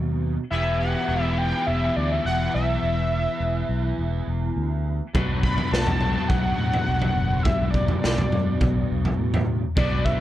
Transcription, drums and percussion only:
5.15 kick loud
5.15 floor tom medium
5.43 kick medium
5.58 floor tom medium
5.74 snare medium
5.87 floor tom medium
6.01 mid tom medium
6.30 kick loud
6.30 floor tom medium
6.74 floor tom medium
7.02 floor tom medium
7.45 kick loud
7.45 floor tom medium
7.74 kick medium
7.88 floor tom medium
8.04 snare medium
8.18 floor tom medium
8.32 mid tom medium
8.61 kick loud
8.61 floor tom medium
9.05 floor tom medium
9.34 floor tom medium
9.77 kick loud
9.77 floor tom medium
10.06 kick medium

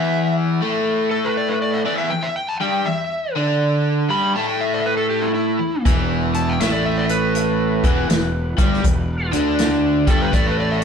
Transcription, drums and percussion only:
5.86 kick loud
5.86 closed hi-hat medium
6.34 closed hi-hat medium
6.60 snare loud
6.60 closed hi-hat medium
7.09 closed hi-hat medium
7.35 closed hi-hat medium
7.84 kick medium
7.84 closed hi-hat medium
8.10 snare loud
8.10 closed hi-hat medium
8.58 kick medium
8.58 closed hi-hat medium
8.73 snare soft
8.84 kick medium
8.84 closed hi-hat medium
9.33 closed hi-hat medium
9.59 snare loud
9.59 closed hi-hat medium
10.07 kick loud
10.07 closed hi-hat medium
10.33 kick medium
10.33 closed hi-hat medium

